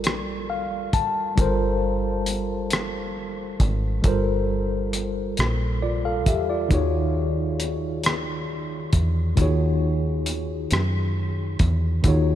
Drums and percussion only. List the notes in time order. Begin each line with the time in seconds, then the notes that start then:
0.04 cross-stick, closed hi-hat
0.93 kick, closed hi-hat
1.38 kick, closed hi-hat
2.26 closed hi-hat
2.70 cross-stick, closed hi-hat
3.60 kick, closed hi-hat
4.04 kick, closed hi-hat
4.93 closed hi-hat
5.37 cross-stick, closed hi-hat
6.26 kick, closed hi-hat
6.71 kick, closed hi-hat
7.60 closed hi-hat
8.04 cross-stick, closed hi-hat
8.93 kick, closed hi-hat
9.37 kick, closed hi-hat
10.26 closed hi-hat
10.71 cross-stick, closed hi-hat
11.59 kick, closed hi-hat
12.04 kick, closed hi-hat